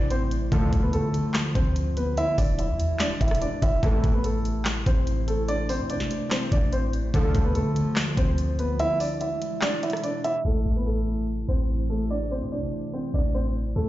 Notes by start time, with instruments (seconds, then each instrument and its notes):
Already playing: 808-style bass A1, ambient pad C3 E3 A3 E4
0.10 grand piano C4 C5, closed hi-hat
0.31 closed hi-hat
0.52 808-style bass D2, analog polysynth A2 D3 F3, ambient pad D3 F3 F4, grand piano A3 A4, kick, closed hi-hat
0.73 808-style bass D2, kick, closed hi-hat
0.83 grand piano B3 B4
0.93 808-style bass D3, grand piano A3 A4, closed hi-hat
1.14 closed hi-hat
1.34 cross-stick, snare, clap, closed hi-hat
1.55 808-style bass D2, grand piano C4 C5, kick, closed hi-hat
1.76 closed hi-hat
1.97 grand piano B3 B4, closed hi-hat
2.17 ambient pad B2 E3 G#3 E4, grand piano E4 E5, closed hi-hat
2.38 808-style bass E1, grand piano D4 D5, kick, open hi-hat
2.59 grand piano E4 E5, closed hi-hat
2.69 808-style bass E2
2.80 closed hi-hat
2.99 grand piano D4 D5, snare, clap, closed hi-hat
3.21 808-style bass E1, grand piano E4 E5, kick, closed hi-hat
3.28 cross-stick, closed hi-hat
3.35 closed hi-hat
3.42 grand piano D4 D5, closed hi-hat
3.62 808-style bass E1, grand piano E4 E5, kick, closed hi-hat
3.83 808-style bass A1, analog polysynth A2 C3 E3, ambient pad C3 A3, grand piano A3 A4, kick, closed hi-hat
4.04 808-style bass A1, kick, closed hi-hat
4.14 grand piano B3 B4
4.24 grand piano A3 A4, closed hi-hat
4.45 closed hi-hat
4.65 cross-stick, snare, clap, closed hi-hat
4.86 808-style bass A1, grand piano C4 C5, kick, closed hi-hat
5.07 closed hi-hat
5.28 grand piano A3 A4, closed hi-hat
5.48 grand piano D4 D5, closed hi-hat
5.69 grand piano C4 C5, open hi-hat
5.79 808-style bass C3
5.90 grand piano D4 D5, closed hi-hat
5.95 808-style bass A1
6.00 snare
6.11 closed hi-hat
6.30 grand piano C4 C5, cross-stick, snare, clap, closed hi-hat
6.52 808-style bass A1, grand piano D4 D5, kick, closed hi-hat
6.73 grand piano C4 C5, closed hi-hat
6.93 closed hi-hat
7.14 808-style bass D2, analog polysynth A2 D3 F3, ambient pad D3 F3 F4, grand piano A3 A4, kick, closed hi-hat
7.35 808-style bass D2, kick, closed hi-hat
7.45 grand piano B3 B4
7.55 808-style bass D3, grand piano A3 A4, closed hi-hat
7.76 closed hi-hat
7.96 cross-stick, snare, clap, closed hi-hat
8.17 808-style bass D2, grand piano C4 C5, kick, closed hi-hat
8.38 closed hi-hat
8.59 grand piano B3 B4, closed hi-hat
8.79 ambient pad B2 E3 G#3 E4, grand piano E4 E5, closed hi-hat
9.00 grand piano D4 D5, open hi-hat
9.21 grand piano E4 E5, closed hi-hat
9.42 closed hi-hat
9.62 grand piano D4 D5, snare, clap, closed hi-hat
9.83 grand piano E4 E5, closed hi-hat
9.90 cross-stick, closed hi-hat
9.97 closed hi-hat
10.04 grand piano D4 D5, closed hi-hat
10.24 grand piano E4 E5, closed hi-hat
10.45 808-style bass A1, ambient pad C3 E3 A3 E4, grand piano A3 A4
10.66 808-style bass A1
10.76 grand piano B3 B4
10.86 grand piano A3 A4
11.48 808-style bass A1, grand piano C4 C5
11.90 grand piano A3 A4
12.11 grand piano D4 D5
12.31 grand piano C4 C5
12.42 808-style bass C3
12.52 grand piano D4 D5
12.57 808-style bass A1
12.93 grand piano C4 C5
13.14 808-style bass A1, grand piano D4 D5
13.35 grand piano C4 C5
13.76 808-style bass D2, ambient pad D3 F3 F4, grand piano A3 A4